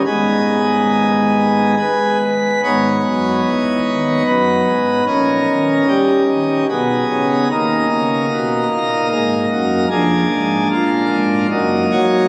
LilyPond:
<<
  \new Staff \with { instrumentName = "Pipe organ" } { \time 3/4 \key gis \minor \tempo 4 = 74 << { <gis, gis b dis' gis'>2 b'4 | cis''2 b'4 | ais'4 g'4 gis'4 | ais'2 ais'4 |
gis'4 eis'4 r8 cis''8 | } \\ { r2. | <b dis'>2. | <cis' dis'>2 <b dis'>4 | <ais dis'>2. |
<ais d'>2 <ais dis'>4 | } >> }
  \new Staff \with { instrumentName = "Pipe organ" } { \clef bass \time 3/4 \key gis \minor gis,,2 r4 | <gis,, gis,>8 fis,8 e,8 dis,8 fis,8 gis,8 | <ais,, ais,>8 dis8 g8 dis8 <b,, b,>8 cis8 | <dis, dis>8 cis8 b,8 ais,8 gis,8 fis,8 |
<eis,, eis,>8 gis,8 ais,8 gis,8 <fis,, fis,>8 fis8 | }
>>